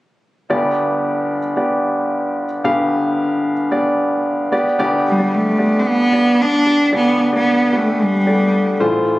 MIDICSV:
0, 0, Header, 1, 3, 480
1, 0, Start_track
1, 0, Tempo, 536193
1, 449, Time_signature, 4, 2, 24, 8
1, 8228, End_track
2, 0, Start_track
2, 0, Title_t, "Grand piano"
2, 0, Program_c, 0, 0
2, 445, Note_on_c, 0, 59, 69
2, 448, Note_on_c, 0, 31, 57
2, 448, Note_on_c, 0, 43, 57
2, 449, Note_on_c, 0, 67, 64
2, 452, Note_on_c, 0, 74, 71
2, 616, Control_c, 0, 64, 127
2, 1230, Note_off_c, 0, 59, 0
2, 1232, Note_off_c, 0, 67, 0
2, 1233, Note_off_c, 0, 74, 0
2, 1401, Note_on_c, 0, 59, 59
2, 1403, Note_on_c, 0, 67, 55
2, 1407, Note_on_c, 0, 74, 58
2, 2188, Note_off_c, 0, 59, 0
2, 2189, Note_off_c, 0, 67, 0
2, 2191, Note_off_c, 0, 74, 0
2, 2333, Note_off_c, 0, 31, 0
2, 2333, Note_off_c, 0, 43, 0
2, 2366, Note_on_c, 0, 59, 74
2, 2367, Note_on_c, 0, 31, 61
2, 2369, Note_on_c, 0, 43, 62
2, 2369, Note_on_c, 0, 67, 67
2, 2370, Note_on_c, 0, 77, 80
2, 3150, Note_off_c, 0, 59, 0
2, 3152, Note_off_c, 0, 67, 0
2, 3152, Note_off_c, 0, 77, 0
2, 3323, Note_on_c, 0, 59, 62
2, 3324, Note_on_c, 0, 67, 54
2, 3328, Note_on_c, 0, 74, 72
2, 4012, Note_off_c, 0, 31, 0
2, 4013, Note_off_c, 0, 43, 0
2, 4031, Note_off_c, 0, 59, 0
2, 4036, Note_off_c, 0, 67, 0
2, 4037, Note_off_c, 0, 74, 0
2, 4045, Note_on_c, 0, 59, 71
2, 4049, Note_on_c, 0, 67, 69
2, 4051, Note_on_c, 0, 74, 77
2, 4061, Control_c, 0, 64, 0
2, 4155, Control_c, 0, 64, 127
2, 4243, Note_off_c, 0, 59, 0
2, 4245, Note_off_c, 0, 67, 0
2, 4245, Note_off_c, 0, 74, 0
2, 4286, Note_on_c, 0, 59, 76
2, 4289, Note_on_c, 0, 67, 73
2, 4291, Note_on_c, 0, 31, 65
2, 4291, Note_on_c, 0, 43, 69
2, 4293, Note_on_c, 0, 74, 90
2, 4301, Control_c, 0, 64, 0
2, 4433, Control_c, 0, 64, 127
2, 4581, Note_off_c, 0, 59, 0
2, 4582, Note_off_c, 0, 67, 0
2, 4584, Note_off_c, 0, 74, 0
2, 4648, Note_on_c, 0, 59, 59
2, 4649, Note_on_c, 0, 67, 54
2, 4650, Note_on_c, 0, 74, 62
2, 4942, Note_off_c, 0, 59, 0
2, 4943, Note_off_c, 0, 67, 0
2, 4943, Note_off_c, 0, 74, 0
2, 4999, Note_on_c, 0, 59, 60
2, 5003, Note_on_c, 0, 67, 57
2, 5005, Note_on_c, 0, 74, 57
2, 5395, Note_off_c, 0, 59, 0
2, 5397, Note_off_c, 0, 67, 0
2, 5398, Note_off_c, 0, 74, 0
2, 5483, Note_on_c, 0, 59, 61
2, 5486, Note_on_c, 0, 67, 52
2, 5489, Note_on_c, 0, 74, 66
2, 5877, Note_off_c, 0, 59, 0
2, 5878, Note_off_c, 0, 67, 0
2, 5880, Note_off_c, 0, 74, 0
2, 5963, Note_on_c, 0, 59, 64
2, 5963, Note_on_c, 0, 67, 53
2, 5966, Note_on_c, 0, 74, 60
2, 6161, Note_off_c, 0, 59, 0
2, 6161, Note_off_c, 0, 67, 0
2, 6163, Note_off_c, 0, 74, 0
2, 6173, Note_off_c, 0, 31, 0
2, 6173, Note_off_c, 0, 43, 0
2, 6198, Note_on_c, 0, 59, 66
2, 6200, Note_on_c, 0, 67, 61
2, 6203, Note_on_c, 0, 31, 63
2, 6203, Note_on_c, 0, 74, 72
2, 6204, Note_on_c, 0, 43, 63
2, 6496, Note_off_c, 0, 59, 0
2, 6497, Note_off_c, 0, 67, 0
2, 6499, Note_off_c, 0, 74, 0
2, 6557, Note_on_c, 0, 59, 61
2, 6557, Note_on_c, 0, 67, 49
2, 6560, Note_on_c, 0, 74, 63
2, 6856, Note_off_c, 0, 59, 0
2, 6856, Note_off_c, 0, 67, 0
2, 6857, Note_off_c, 0, 74, 0
2, 6915, Note_on_c, 0, 59, 56
2, 6915, Note_on_c, 0, 67, 55
2, 6917, Note_on_c, 0, 71, 64
2, 7312, Note_off_c, 0, 59, 0
2, 7312, Note_off_c, 0, 67, 0
2, 7314, Note_off_c, 0, 71, 0
2, 7400, Note_on_c, 0, 67, 50
2, 7401, Note_on_c, 0, 57, 50
2, 7404, Note_on_c, 0, 74, 67
2, 7459, Note_on_c, 0, 59, 62
2, 7462, Note_off_c, 0, 57, 0
2, 7795, Note_off_c, 0, 67, 0
2, 7797, Note_off_c, 0, 74, 0
2, 7824, Note_off_c, 0, 59, 0
2, 7849, Note_off_c, 0, 31, 0
2, 7849, Note_off_c, 0, 43, 0
2, 7878, Note_on_c, 0, 57, 71
2, 7878, Note_on_c, 0, 65, 72
2, 7879, Note_on_c, 0, 33, 64
2, 7882, Note_on_c, 0, 45, 62
2, 7882, Note_on_c, 0, 72, 88
2, 7899, Control_c, 0, 64, 0
2, 8064, Control_c, 0, 64, 127
2, 8228, Note_off_c, 0, 33, 0
2, 8228, Note_off_c, 0, 45, 0
2, 8228, Note_off_c, 0, 57, 0
2, 8228, Note_off_c, 0, 65, 0
2, 8228, Note_off_c, 0, 72, 0
2, 8228, End_track
3, 0, Start_track
3, 0, Title_t, "Cello"
3, 0, Program_c, 1, 42
3, 4547, Note_on_c, 1, 55, 66
3, 4783, Note_on_c, 1, 57, 70
3, 4796, Note_off_c, 1, 55, 0
3, 5189, Note_on_c, 1, 60, 55
3, 5202, Note_off_c, 1, 57, 0
3, 5260, Note_on_c, 1, 59, 85
3, 5274, Note_off_c, 1, 60, 0
3, 5744, Note_on_c, 1, 62, 89
3, 5757, Note_off_c, 1, 59, 0
3, 6216, Note_off_c, 1, 62, 0
3, 6230, Note_on_c, 1, 59, 76
3, 6554, Note_off_c, 1, 59, 0
3, 6589, Note_on_c, 1, 59, 79
3, 6947, Note_on_c, 1, 57, 67
3, 6961, Note_off_c, 1, 59, 0
3, 7188, Note_on_c, 1, 55, 73
3, 7202, Note_off_c, 1, 57, 0
3, 7897, Note_off_c, 1, 55, 0
3, 8228, End_track
0, 0, End_of_file